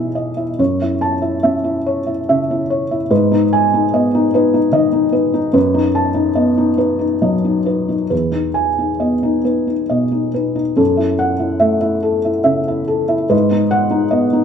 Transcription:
0.00 0.56 E2 soft
0.00 0.41 B2 soft
0.00 0.61 D#4 soft
0.00 0.37 E4 soft
0.00 0.15 D#5 soft
0.00 0.61 E5 soft
0.00 0.62 G#5 soft
0.15 0.50 D#5 soft
0.37 0.59 E4 soft
0.59 3.07 F#2 soft
0.59 0.93 C#5 soft
0.82 1.15 E4 soft
1.01 1.35 A5 medium
1.22 1.56 E4 soft
1.43 2.11 C#4 soft
1.43 1.77 E5 soft
1.64 1.98 E4 soft
1.86 2.20 C#5 soft
2.07 2.40 E4 soft
2.29 2.95 C#3 soft
2.29 2.62 E5 soft
2.51 2.83 E4 soft
2.70 3.03 C#5 soft
2.91 3.11 E4 soft
3.11 5.52 G#2 medium
3.11 3.44 B4 soft
3.32 3.65 D#4 soft
3.53 3.85 G#5 medium
3.74 4.06 D#4 soft
3.94 4.58 B3 soft
3.94 4.26 D#5 soft
4.14 4.32 D#4 soft
4.34 4.52 D#4 soft
4.34 4.67 B4 soft
4.54 4.86 D#4 soft
4.72 5.38 D#3 soft
4.72 5.06 D#5 medium
4.93 5.11 D#4 soft
5.13 5.32 D#4 soft
5.13 5.46 B4 soft
5.34 5.55 D#4 soft
5.53 8.06 F#2 medium
5.53 5.87 B4 medium
5.74 6.08 D#4 soft
5.95 6.29 A5 medium
6.14 6.49 D#4 soft
6.35 7.04 B3 soft
6.35 6.70 D#5 soft
6.58 6.76 D#4 soft
6.78 6.97 D#4 soft
6.78 7.13 B4 soft
6.99 7.35 D#4 soft
7.22 7.93 F#3 soft
7.22 7.57 D#5 soft
7.45 7.64 D#4 soft
7.66 7.87 D#4 soft
7.66 8.02 B4 soft
7.89 8.11 D#4 soft
8.10 10.75 E2 soft
8.10 8.47 B4 soft
8.32 8.69 D#4 soft
8.54 8.91 G#5 soft
8.79 9.15 D#4 soft
9.00 9.73 B3 soft
9.00 9.37 D#5 soft
9.23 9.43 D#4 soft
9.44 9.66 D#4 soft
9.44 9.82 B4 soft
9.67 10.04 D#4 soft
9.89 10.62 B2 soft
9.89 10.26 D#5 soft
10.11 10.32 D#4 soft
10.34 10.54 D#4 soft
10.34 10.70 B4 soft
10.55 10.78 D#4 soft
10.77 13.27 F#2 soft
10.77 11.12 A4 soft
10.97 11.33 E4 soft
11.19 11.54 F#5 medium
11.39 11.75 E4 soft
11.60 12.29 A3 soft
11.60 11.96 E5 soft
11.81 12.17 E4 soft
12.03 12.38 A4 soft
12.25 12.60 E4 soft
12.44 13.13 C#3 soft
12.44 12.80 E5 soft
12.68 13.02 E4 soft
12.88 13.22 A4 soft
13.08 13.31 E4 soft
13.29 14.44 G#2 medium
13.29 13.64 B4 medium
13.51 13.85 D#4 soft
13.71 14.05 F#5 medium
13.91 14.25 D#4 soft
14.11 14.44 B3 soft
14.11 14.44 D#5 soft
14.33 14.44 D#4 medium

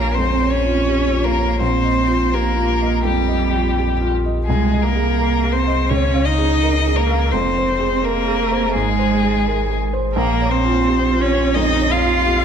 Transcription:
0.00 0.13 A#1 soft
0.00 4.49 A#1 medium
0.00 0.17 A#3 medium
0.00 0.66 F4 soft
0.00 0.88 G4 soft
0.00 0.16 A#4 soft
0.00 0.42 C#5 soft
0.15 0.56 F2 soft
0.15 0.54 C4 medium
0.15 0.52 C5 medium
0.42 0.80 C#5 soft
0.51 1.26 C#4 medium
0.51 1.26 C#5 medium
0.66 1.04 F4 soft
0.88 1.13 G4 soft
1.13 1.52 F4 soft
1.24 1.60 A#3 medium
1.24 1.61 A#4 medium
1.37 1.61 C#5 soft
1.60 3.00 A#1 soft
1.60 2.35 C4 medium
1.60 2.36 C5 medium
1.84 2.23 D#5 soft
2.08 2.47 F4 soft
2.32 3.04 A#3 medium
2.32 2.56 G4 soft
2.32 3.05 A#4 medium
2.57 2.95 F4 soft
2.82 3.19 D#5 soft
3.03 3.43 F2 soft
3.03 4.11 G3 medium
3.03 4.10 G4 soft
3.28 3.66 D#5 soft
3.53 3.91 F4 soft
3.78 4.01 G4 soft
4.01 4.38 F4 soft
4.26 4.48 D#5 soft
4.45 5.91 C2 medium
4.45 4.84 G#3 medium
4.45 4.84 G#4 soft
4.50 5.88 C2 medium
4.73 5.10 D#5 soft
4.82 5.55 A#3 medium
4.82 5.54 A#4 medium
4.96 5.34 G#4 soft
5.20 5.43 A#4 soft
5.44 5.81 G#4 soft
5.52 5.91 C4 medium
5.52 5.91 C5 medium
5.67 5.91 D#5 soft
5.89 7.34 C#2 medium
5.89 7.29 C#2 soft
5.89 6.27 C#4 medium
5.89 6.27 C#5 medium
6.14 6.52 F5 soft
6.25 6.97 D#4 medium
6.25 6.98 D#5 medium
6.38 6.76 G#4 soft
6.63 6.86 A#4 soft
6.87 7.24 G#4 soft
6.97 7.33 A#3 medium
6.97 7.33 A#4 medium
7.10 7.33 F5 soft
7.31 8.76 F1 medium
7.31 8.71 F2 medium
7.31 8.03 C4 medium
7.31 8.07 C5 medium
7.58 7.95 C5 soft
7.80 8.18 G#4 soft
8.02 8.76 A#3 medium
8.02 8.27 A#4 soft
8.02 8.75 A#4 medium
8.28 8.65 G#4 soft
8.52 8.75 C5 soft
8.74 10.17 G#1 medium
8.74 10.12 G#2 medium
8.74 9.80 G#3 medium
8.74 9.79 G#4 medium
8.99 9.36 C5 soft
9.24 9.60 G#4 soft
9.48 9.70 A#4 soft
9.71 10.07 G#4 soft
9.93 10.16 C5 soft
10.14 12.45 A#1 medium
10.14 11.53 A#1 medium
10.14 10.51 A#3 medium
10.14 10.53 A#4 medium
10.42 10.78 C#5 soft
10.49 11.22 C4 medium
10.49 11.23 C5 medium
10.65 11.02 F4 soft
10.88 11.11 G4 soft
11.10 11.47 F4 soft
11.20 11.57 C#4 medium
11.20 11.56 C#5 medium
11.33 11.71 C#5 soft
11.55 11.94 F2 soft
11.55 11.94 D#4 medium
11.55 11.93 D#5 medium
11.81 12.18 C#5 medium
11.92 12.45 F4 medium
11.92 12.45 F5 medium
12.04 12.41 F4 soft
12.26 12.45 G4 soft

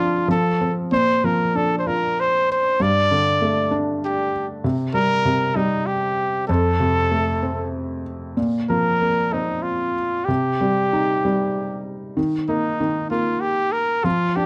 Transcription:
0.00 0.28 F3 medium
0.00 0.30 D4 soft
0.00 0.29 F4 medium
0.28 0.89 F3 medium
0.28 0.74 A4 medium
0.61 0.91 C4 soft
0.92 2.76 A#2 medium
0.92 1.26 C5 medium
1.24 2.45 F3 soft
1.24 1.58 A#4 medium
1.55 2.76 D4 soft
1.55 1.78 A4 medium
1.79 1.89 C5 medium
1.87 2.77 F4 soft
1.87 2.22 A#4 medium
2.20 2.50 C5 medium
2.52 2.84 C5 medium
2.80 4.61 G2 medium
2.80 3.78 D5 loud
3.11 4.31 D3 soft
3.42 4.61 A3 medium
3.71 4.61 D4 medium
4.05 4.47 G4 medium
4.64 5.24 C3 medium
4.94 5.54 G3 soft
4.94 5.58 A#4 loud
5.25 6.45 C3 medium
5.56 6.45 G3 medium
5.56 5.88 D#4 medium
5.87 6.47 G4 medium
6.48 8.34 F2 medium
6.48 7.69 A4 medium
6.80 8.02 C3 soft
7.12 8.34 A3 soft
7.43 8.35 C4 soft
8.37 10.25 A#2 medium
8.69 9.93 F3 soft
8.69 9.34 A#4 medium
9.01 10.25 A#3 soft
9.33 10.26 C4 soft
9.33 9.64 D#4 medium
9.63 10.27 F4 medium
10.25 12.13 C3 medium
10.25 11.85 G4 medium
10.61 11.23 G3 soft
10.93 12.14 D#4 soft
11.25 12.15 G3 soft
12.17 12.79 D#3 medium
12.49 13.09 A#3 soft
12.49 13.07 D#4 medium
12.80 14.02 D#3 soft
13.11 14.02 A#3 soft
13.11 13.42 F4 medium
13.41 13.74 G4 medium
13.72 14.06 A#4 medium
14.04 14.46 F3 medium
14.04 14.38 F4 medium
14.36 14.46 D4 soft
14.36 14.46 G4 medium

